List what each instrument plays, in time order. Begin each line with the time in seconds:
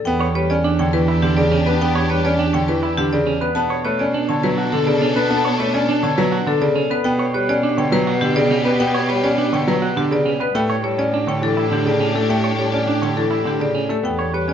0.05 cello E2, grand piano B3, violin section D4 G4, marimba G5
0.20 clean electric guitar C#5
0.35 grand piano G3, clean electric guitar B4, marimba C#5
0.50 grand piano C#4, marimba D5
0.64 clean electric guitar D4
0.79 grand piano D3, clean electric guitar C#5, marimba G5
0.93 grand piano E3, marimba B4
1.08 clean electric guitar E4
1.22 grand piano D3, clean electric guitar D4, marimba G4
1.37 grand piano C#3, marimba D5
1.52 clean electric guitar C#4
1.66 grand piano B3, clean electric guitar B4, marimba B4
1.81 grand piano B3, marimba G5
1.95 clean electric guitar C#5
2.10 grand piano G3, clean electric guitar B4, marimba C#5
2.25 grand piano C#4, marimba D5
2.39 clean electric guitar D4
2.53 grand piano D3, clean electric guitar C#5, marimba G5
2.68 grand piano E3, marimba B4
2.83 clean electric guitar E4
2.97 grand piano D3, clean electric guitar D4, marimba G4
3.13 grand piano C#3, marimba D5
3.27 clean electric guitar C#4
3.41 grand piano B3, clean electric guitar B4, marimba B4
3.55 cello B2, grand piano B3, violin section D4 A4, marimba A5
3.70 clean electric guitar C#5
3.85 grand piano A3, clean electric guitar B4, marimba C#5
3.99 grand piano C#4, marimba D5
4.14 clean electric guitar D4
4.29 grand piano D3, clean electric guitar C#5, marimba A5
4.43 grand piano F#3, marimba B4
4.58 clean electric guitar F#4
4.72 grand piano D3, clean electric guitar D4, marimba A4
4.87 grand piano C#3, marimba D5
5.02 clean electric guitar C#4
5.16 grand piano B3, clean electric guitar B4, marimba B4
5.31 grand piano B3, marimba A5
5.45 clean electric guitar C#5
5.60 grand piano A3, clean electric guitar B4, marimba C#5
5.74 grand piano C#4, marimba D5
5.89 clean electric guitar D4
6.03 grand piano D3, clean electric guitar C#5, marimba A5
6.18 grand piano F#3, marimba B4
6.32 clean electric guitar F#4
6.47 grand piano D3, clean electric guitar D4, marimba A4
6.61 grand piano C#3, marimba D5
6.76 clean electric guitar C#4
6.90 grand piano B3, clean electric guitar B4, marimba B4
7.04 cello B2, grand piano B3, violin section B3 G4, marimba G5
7.19 clean electric guitar C#5
7.34 grand piano G3, clean electric guitar B4, marimba C#5
7.49 grand piano C#4, marimba D5
7.63 clean electric guitar D4
7.78 grand piano D3, clean electric guitar C#5, marimba G5
7.92 grand piano F#3, marimba B4
8.07 clean electric guitar F#4
8.21 grand piano D3, clean electric guitar D4, marimba G4
8.36 grand piano C#3, marimba D5
8.51 clean electric guitar C#4
8.65 grand piano B3, clean electric guitar B4, marimba B4
8.80 grand piano B3, marimba G5
8.94 clean electric guitar C#5
9.09 grand piano G3, clean electric guitar B4, marimba C#5
9.24 grand piano C#4, marimba D5
9.38 clean electric guitar D4
9.53 grand piano D3, clean electric guitar C#5, marimba G5
9.67 grand piano F#3, marimba B4
9.82 clean electric guitar F#4
9.96 grand piano D3, clean electric guitar D4, marimba G4
10.11 grand piano C#3, marimba D5
10.26 clean electric guitar C#4
10.40 grand piano B3, clean electric guitar B4, marimba B4
10.55 cello A2, grand piano A3, violin section D4 G4, marimba G5
10.70 clean electric guitar C#5
10.84 grand piano G3, clean electric guitar A4, marimba C#5
10.98 grand piano C#4, marimba D5
11.14 clean electric guitar D4
11.27 grand piano D3, clean electric guitar C#5, marimba G5
11.42 grand piano E3, marimba A4
11.57 clean electric guitar E4
11.71 grand piano D3, clean electric guitar D4, marimba G4
11.86 grand piano C#3, marimba D5
12.00 clean electric guitar C#4
12.15 grand piano A3, clean electric guitar A4, marimba A4
12.29 grand piano A3, marimba G5
12.44 clean electric guitar C#5
12.58 grand piano G3, clean electric guitar A4, marimba C#5
12.72 grand piano C#4, marimba D5
12.88 clean electric guitar D4
13.02 grand piano D3, clean electric guitar C#5, marimba G5
13.17 grand piano E3, marimba A4
13.31 clean electric guitar E4
13.45 grand piano D3, clean electric guitar D4, marimba G4
13.60 grand piano C#3, marimba D5
13.75 clean electric guitar C#4
13.89 grand piano A3, clean electric guitar A4, marimba A4
14.03 cello E2, grand piano B3, violin section D4 G4, marimba G5
14.19 clean electric guitar C#5
14.34 grand piano G3, clean electric guitar B4, marimba C#5
14.48 grand piano C#4, marimba D5